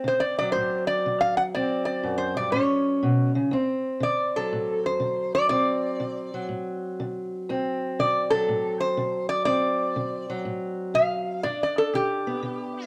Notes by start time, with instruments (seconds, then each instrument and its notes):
Already playing: steel-string acoustic guitar C4
0.04 steel-string acoustic guitar D3, resonator guitar played with a steel bar C5
0.20 resonator guitar played with a steel bar D5
0.39 steel-string acoustic guitar F#3, resonator guitar played with a steel bar D5
0.52 steel-string acoustic guitar A2, resonator guitar played with a steel bar C5
0.87 resonator guitar played with a steel bar D5
1.06 steel-string acoustic guitar D3
1.21 resonator guitar played with a steel bar F5
1.37 resonator guitar played with a steel bar F#5
1.55 steel-string acoustic guitar D2 C4, resonator guitar played with a steel bar D5
1.85 resonator guitar played with a steel bar D5
2.03 steel-string acoustic guitar F#2
2.18 resonator guitar played with a steel bar C5
2.37 steel-string acoustic guitar G2, resonator guitar played with a steel bar D5
2.52 steel-string acoustic guitar A2 C#4, resonator guitar played with a steel bar C#5
3.03 steel-string acoustic guitar B2
3.35 steel-string acoustic guitar C#3
3.51 steel-string acoustic guitar D2 C4
4.00 steel-string acoustic guitar D3, resonator guitar played with a steel bar D5
4.36 steel-string acoustic guitar F#3, resonator guitar played with a steel bar A4
4.52 steel-string acoustic guitar A2
4.86 resonator guitar played with a steel bar C5
5.00 steel-string acoustic guitar D3
5.35 resonator guitar played with a steel bar D5
5.49 steel-string acoustic guitar D2 C4, resonator guitar played with a steel bar D5
6.00 steel-string acoustic guitar D3
6.34 steel-string acoustic guitar F#3
6.49 steel-string acoustic guitar A2
7.00 steel-string acoustic guitar D3
7.49 steel-string acoustic guitar D2 C4
7.99 steel-string acoustic guitar D3, resonator guitar played with a steel bar D5
8.30 steel-string acoustic guitar F#3, resonator guitar played with a steel bar A4
8.49 steel-string acoustic guitar A2
8.80 resonator guitar played with a steel bar C5
8.97 steel-string acoustic guitar D3
9.29 resonator guitar played with a steel bar D5
9.45 steel-string acoustic guitar D2 C4, resonator guitar played with a steel bar D5
9.96 steel-string acoustic guitar D3
10.30 steel-string acoustic guitar F#3
10.45 steel-string acoustic guitar A2
10.94 steel-string acoustic guitar D3, resonator guitar played with a steel bar F5
11.43 steel-string acoustic guitar G2 D4, resonator guitar played with a steel bar D5
11.63 resonator guitar played with a steel bar D5
11.78 resonator guitar played with a steel bar A4
11.94 steel-string acoustic guitar D3, resonator guitar played with a steel bar G4
12.27 steel-string acoustic guitar B3
12.43 steel-string acoustic guitar D3